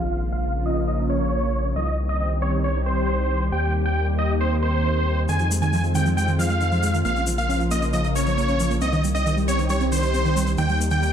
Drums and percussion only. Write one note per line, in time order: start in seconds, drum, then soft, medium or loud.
5.29 shaker soft
5.39 shaker soft
5.51 shaker medium
5.62 shaker soft
5.73 shaker soft
5.84 shaker soft
5.95 shaker medium
6.06 shaker soft
6.18 shaker medium
6.28 shaker soft
6.40 shaker medium
6.49 shaker soft
6.61 shaker medium
6.72 shaker soft
6.83 shaker medium
6.94 shaker soft
7.05 shaker soft
7.16 shaker soft
7.27 shaker medium
7.38 shaker soft
7.50 shaker soft
7.60 shaker soft
7.71 shaker medium
7.82 shaker soft
7.93 shaker soft
8.04 shaker soft
8.16 shaker medium
8.26 shaker soft
8.38 shaker soft
8.48 shaker soft
8.60 shaker medium
8.71 shaker soft
8.81 shaker soft
8.93 shaker soft
9.04 shaker medium
9.15 shaker soft
9.26 shaker soft
9.37 shaker soft
9.48 shaker medium
9.59 shaker soft
9.69 shaker medium
9.80 shaker soft
9.92 shaker medium
10.03 shaker soft
10.14 shaker soft
10.25 shaker soft
10.37 shaker medium
10.47 shaker soft
10.58 shaker soft
10.69 shaker soft
10.81 shaker medium
10.91 shaker soft
11.03 shaker soft